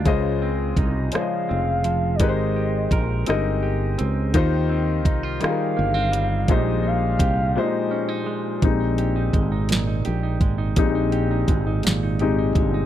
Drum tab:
HH |x-xx-x|x-xx-x|x-xx-x|x-x---|
SD |---r--|---r--|---r--|------|
BD |o-o---|o-o---|o-o---|o-o---|

HH |xxxxxx|xxxxxx|
SD |---o--|---o--|
BD |o-o--o|o-o--o|